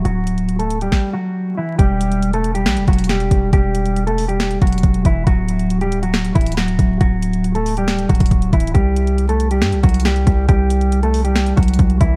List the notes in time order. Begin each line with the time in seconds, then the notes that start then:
0.05 D1 F#3 F#4, closed hi-hat
0.27 closed hi-hat
0.38 closed hi-hat
0.49 closed hi-hat
0.59 A3 A4, closed hi-hat
0.70 closed hi-hat
0.81 G3 G4, closed hi-hat
0.92 kick, snare
1.13 F#3 F#4
1.57 E3 E4
1.79 E1 G3 G4, kick, closed hi-hat
2.01 closed hi-hat
2.12 closed hi-hat
2.22 closed hi-hat
2.33 A3 A4, closed hi-hat
2.44 closed hi-hat
2.55 G3 G4, closed hi-hat
2.66 B1, snare, closed hi-hat
2.77 E1, closed hi-hat
2.88 E1 F#3 F#4, kick, closed hi-hat
2.93 closed hi-hat
2.98 closed hi-hat
3.04 closed hi-hat
3.09 G3 G4, snare, closed hi-hat
3.20 closed hi-hat
3.31 E1, kick, closed hi-hat
3.53 E1 G3 G4, kick, closed hi-hat
3.75 closed hi-hat
3.86 closed hi-hat
3.96 closed hi-hat
4.07 A3 A4, closed hi-hat
4.18 open hi-hat
4.28 G3 G4, closed hi-hat
4.40 snare, closed hi-hat
4.51 closed hi-hat
4.62 E1 F#3 F#4, kick, closed hi-hat
4.67 closed hi-hat
4.72 closed hi-hat
4.78 closed hi-hat
4.83 E1, kick, closed hi-hat
4.94 closed hi-hat
5.05 E1 E3 E4, kick, closed hi-hat
5.27 D1 F#3 F#4, kick, closed hi-hat
5.48 closed hi-hat
5.59 closed hi-hat
5.70 closed hi-hat
5.81 G3 G4, closed hi-hat
5.92 closed hi-hat
6.03 F#3 F#4, closed hi-hat
6.14 snare, closed hi-hat
6.25 closed hi-hat
6.35 D1 E3 E4, kick, closed hi-hat
6.41 closed hi-hat
6.46 closed hi-hat
6.52 closed hi-hat
6.57 F#3 F#4, snare
6.68 closed hi-hat
6.79 D1, kick, closed hi-hat
7.01 D1 F#3 F#4, kick, closed hi-hat
7.22 closed hi-hat
7.33 closed hi-hat
7.44 closed hi-hat
7.55 A3 A4, closed hi-hat
7.66 open hi-hat
7.77 G3 G4, closed hi-hat
7.88 snare, closed hi-hat
7.99 closed hi-hat
8.09 D1 F#3 F#4, kick, closed hi-hat
8.15 closed hi-hat
8.20 D1, kick, closed hi-hat
8.26 closed hi-hat
8.31 D1, kick, closed hi-hat
8.42 closed hi-hat
8.53 D1 E3 E4, kick, closed hi-hat
8.60 closed hi-hat
8.67 closed hi-hat
8.74 C2 G3 G4, kick, closed hi-hat
8.96 closed hi-hat
9.07 closed hi-hat
9.18 closed hi-hat
9.29 A3 A4, closed hi-hat
9.40 closed hi-hat
9.51 G3 G4, closed hi-hat
9.62 G2, snare, closed hi-hat
9.72 C2, closed hi-hat
9.83 C2 F#3 F#4, kick, closed hi-hat
9.89 closed hi-hat
9.94 closed hi-hat
10.00 closed hi-hat
10.05 G3 G4, snare
10.16 closed hi-hat
10.27 C2, kick, closed hi-hat
10.49 C2 G3 G4, kick, closed hi-hat
10.70 closed hi-hat
10.81 closed hi-hat
10.92 closed hi-hat
11.03 A3 A4, closed hi-hat
11.14 open hi-hat
11.24 G3 G4, closed hi-hat
11.36 snare, closed hi-hat
11.46 closed hi-hat
11.57 C2 F#3 F#4, kick, closed hi-hat
11.63 closed hi-hat
11.68 closed hi-hat
11.74 closed hi-hat
11.79 C2, kick, closed hi-hat
11.90 closed hi-hat
12.01 C2 E3 E4, kick, closed hi-hat